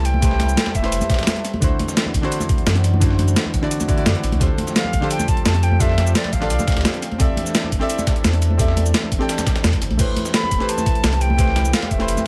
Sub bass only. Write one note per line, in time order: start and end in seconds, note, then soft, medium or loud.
0.00 0.56 C2 medium
0.75 0.94 E1 medium
0.92 1.00 G1 loud
1.18 1.26 A1 loud
1.62 1.70 D2 loud
2.14 2.22 A1 medium
2.67 3.35 F#2 medium
3.54 3.62 A1 medium
4.06 4.14 F#2 medium
4.23 4.34 A1 medium
4.32 4.40 D2 loud
4.41 4.49 D2 loud
4.93 5.01 A1 medium
5.45 6.14 F2 medium
6.33 6.51 A1 medium
6.50 6.58 C2 loud
6.76 6.84 D2 medium
7.20 7.28 C2 loud
7.72 7.80 G1 medium
8.24 8.93 E2 medium
9.12 9.20 G1 medium
9.64 9.72 E2 medium
9.82 9.92 G1 medium
9.90 9.98 C2 loud
9.99 10.07 A1 loud
10.51 10.59 E1 medium
11.04 11.72 C2 medium
11.91 12.10 E1 medium
12.08 12.16 G1 loud